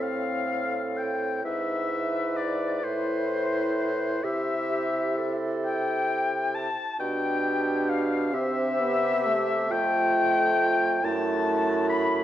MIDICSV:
0, 0, Header, 1, 6, 480
1, 0, Start_track
1, 0, Tempo, 934579
1, 739, Time_signature, 6, 3, 24, 8
1, 3132, Tempo, 904977
1, 5052, Tempo, 879765
1, 6427, End_track
2, 0, Start_track
2, 0, Title_t, "Flute"
2, 0, Program_c, 0, 73
2, 19, Note_on_c, 0, 77, 82
2, 510, Note_on_c, 0, 79, 70
2, 517, Note_off_c, 0, 77, 0
2, 741, Note_off_c, 0, 79, 0
2, 744, Note_on_c, 0, 76, 69
2, 1221, Note_on_c, 0, 74, 62
2, 1229, Note_off_c, 0, 76, 0
2, 1463, Note_on_c, 0, 72, 84
2, 1471, Note_off_c, 0, 74, 0
2, 2172, Note_off_c, 0, 72, 0
2, 2175, Note_on_c, 0, 76, 84
2, 2746, Note_off_c, 0, 76, 0
2, 2898, Note_on_c, 0, 79, 96
2, 3348, Note_off_c, 0, 79, 0
2, 3371, Note_on_c, 0, 81, 87
2, 3611, Note_on_c, 0, 79, 91
2, 3619, Note_off_c, 0, 81, 0
2, 4084, Note_on_c, 0, 77, 76
2, 4092, Note_off_c, 0, 79, 0
2, 4321, Note_on_c, 0, 76, 103
2, 4329, Note_off_c, 0, 77, 0
2, 5039, Note_off_c, 0, 76, 0
2, 5042, Note_on_c, 0, 79, 112
2, 5771, Note_on_c, 0, 81, 102
2, 5780, Note_off_c, 0, 79, 0
2, 6255, Note_on_c, 0, 83, 96
2, 6263, Note_off_c, 0, 81, 0
2, 6427, Note_off_c, 0, 83, 0
2, 6427, End_track
3, 0, Start_track
3, 0, Title_t, "Oboe"
3, 0, Program_c, 1, 68
3, 15, Note_on_c, 1, 77, 62
3, 498, Note_on_c, 1, 79, 58
3, 506, Note_off_c, 1, 77, 0
3, 739, Note_off_c, 1, 79, 0
3, 744, Note_on_c, 1, 76, 68
3, 1213, Note_on_c, 1, 74, 54
3, 1220, Note_off_c, 1, 76, 0
3, 1458, Note_on_c, 1, 72, 64
3, 1466, Note_off_c, 1, 74, 0
3, 2177, Note_on_c, 1, 76, 72
3, 2184, Note_off_c, 1, 72, 0
3, 2759, Note_off_c, 1, 76, 0
3, 2897, Note_on_c, 1, 79, 69
3, 3370, Note_on_c, 1, 81, 75
3, 3378, Note_off_c, 1, 79, 0
3, 3604, Note_off_c, 1, 81, 0
3, 3607, Note_on_c, 1, 79, 80
3, 4085, Note_on_c, 1, 77, 70
3, 4093, Note_off_c, 1, 79, 0
3, 4325, Note_on_c, 1, 76, 87
3, 4333, Note_off_c, 1, 77, 0
3, 5051, Note_on_c, 1, 79, 99
3, 5059, Note_off_c, 1, 76, 0
3, 5774, Note_on_c, 1, 81, 78
3, 5782, Note_off_c, 1, 79, 0
3, 6234, Note_off_c, 1, 81, 0
3, 6237, Note_on_c, 1, 83, 91
3, 6427, Note_off_c, 1, 83, 0
3, 6427, End_track
4, 0, Start_track
4, 0, Title_t, "Clarinet"
4, 0, Program_c, 2, 71
4, 0, Note_on_c, 2, 69, 50
4, 737, Note_on_c, 2, 71, 57
4, 744, Note_off_c, 2, 69, 0
4, 2178, Note_on_c, 2, 67, 58
4, 2185, Note_off_c, 2, 71, 0
4, 2346, Note_off_c, 2, 67, 0
4, 2416, Note_on_c, 2, 67, 58
4, 2654, Note_off_c, 2, 67, 0
4, 2658, Note_on_c, 2, 69, 59
4, 3450, Note_off_c, 2, 69, 0
4, 3609, Note_on_c, 2, 67, 69
4, 4298, Note_off_c, 2, 67, 0
4, 4311, Note_on_c, 2, 67, 69
4, 5043, Note_on_c, 2, 65, 80
4, 5051, Note_off_c, 2, 67, 0
4, 5768, Note_on_c, 2, 64, 74
4, 5776, Note_off_c, 2, 65, 0
4, 6427, Note_off_c, 2, 64, 0
4, 6427, End_track
5, 0, Start_track
5, 0, Title_t, "French horn"
5, 0, Program_c, 3, 60
5, 0, Note_on_c, 3, 60, 52
5, 720, Note_off_c, 3, 60, 0
5, 742, Note_on_c, 3, 64, 54
5, 1444, Note_off_c, 3, 64, 0
5, 1455, Note_on_c, 3, 64, 55
5, 2160, Note_off_c, 3, 64, 0
5, 2177, Note_on_c, 3, 64, 56
5, 3447, Note_off_c, 3, 64, 0
5, 3609, Note_on_c, 3, 62, 65
5, 4318, Note_on_c, 3, 60, 73
5, 4325, Note_off_c, 3, 62, 0
5, 4566, Note_on_c, 3, 59, 65
5, 4574, Note_off_c, 3, 60, 0
5, 4811, Note_on_c, 3, 57, 79
5, 4819, Note_off_c, 3, 59, 0
5, 5771, Note_off_c, 3, 57, 0
5, 5774, Note_on_c, 3, 57, 81
5, 6427, Note_off_c, 3, 57, 0
5, 6427, End_track
6, 0, Start_track
6, 0, Title_t, "Bassoon"
6, 0, Program_c, 4, 70
6, 0, Note_on_c, 4, 45, 54
6, 719, Note_off_c, 4, 45, 0
6, 742, Note_on_c, 4, 44, 50
6, 1456, Note_on_c, 4, 45, 60
6, 1463, Note_off_c, 4, 44, 0
6, 2172, Note_off_c, 4, 45, 0
6, 2175, Note_on_c, 4, 48, 60
6, 3446, Note_off_c, 4, 48, 0
6, 3608, Note_on_c, 4, 47, 66
6, 4298, Note_off_c, 4, 47, 0
6, 4318, Note_on_c, 4, 48, 75
6, 5035, Note_off_c, 4, 48, 0
6, 5049, Note_on_c, 4, 41, 68
6, 5758, Note_off_c, 4, 41, 0
6, 5771, Note_on_c, 4, 42, 75
6, 6427, Note_off_c, 4, 42, 0
6, 6427, End_track
0, 0, End_of_file